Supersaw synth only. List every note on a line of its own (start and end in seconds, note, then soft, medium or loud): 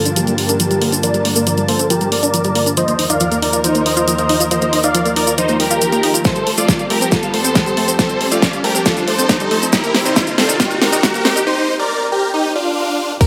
0.00 0.12 F4 medium
0.00 0.12 A4 medium
0.16 0.34 A#3 medium
0.16 0.34 G4 medium
0.38 0.95 G4 medium
0.38 0.95 A#4 medium
1.03 1.30 A#4 medium
1.03 1.30 D5 loud
1.36 1.63 A#4 medium
1.36 1.63 D5 medium
1.69 1.86 A4 medium
1.69 1.86 C5 medium
1.90 2.08 G4 medium
1.90 2.08 A#4 medium
2.12 2.69 A#4 medium
2.12 2.69 D5 medium
2.77 3.04 C5 medium
2.77 3.04 D#5 loud
3.10 3.37 D5 medium
3.10 3.37 F5 medium
3.42 3.60 A#4 medium
3.42 3.60 D5 medium
3.64 3.82 D#4 medium
3.64 3.82 C5 medium
3.86 4.42 C5 medium
3.86 4.42 D#5 medium
4.51 4.78 C5 medium
4.51 4.78 D#5 loud
4.84 5.11 D5 medium
4.84 5.11 F5 medium
5.16 5.34 A#4 medium
5.16 5.34 D5 medium
5.38 5.56 D#4 medium
5.38 5.56 C5 medium
5.60 6.16 G4 medium
5.60 6.16 A#4 medium
6.25 6.52 A4 medium
6.25 6.52 C5 loud
6.58 6.84 F4 medium
6.58 6.84 D5 medium
6.90 7.08 G4 medium
6.90 7.08 A#4 medium
7.12 7.30 F4 medium
7.12 7.30 A4 medium
7.34 7.90 A4 medium
7.34 7.90 C5 medium
7.99 8.26 A4 medium
7.99 8.26 C5 loud
8.31 8.58 F4 medium
8.31 8.58 D5 medium
8.64 8.82 G4 medium
8.64 8.82 A#4 medium
8.86 9.04 F4 medium
8.86 9.04 A4 medium
9.08 9.64 A4 medium
9.08 9.64 C5 medium
9.73 10.00 G4 medium
9.73 10.00 A#4 loud
10.06 10.32 D#4 medium
10.06 10.32 C5 medium
10.38 10.56 C4 medium
10.38 10.56 A4 medium
10.60 10.78 D#4 medium
10.60 10.78 G4 medium
10.82 11.38 G4 medium
10.82 11.38 A#4 medium
11.47 11.74 D#4 medium
11.47 11.74 C5 loud
11.79 12.06 A#4 medium
11.79 12.06 D5 medium
12.12 12.30 G4 medium
12.12 12.30 A#4 medium
12.34 12.52 D#4 medium
12.34 12.52 G4 medium
12.55 13.12 D4 medium
12.55 13.12 F4 medium
13.21 13.27 G4 medium
13.21 13.27 A#4 loud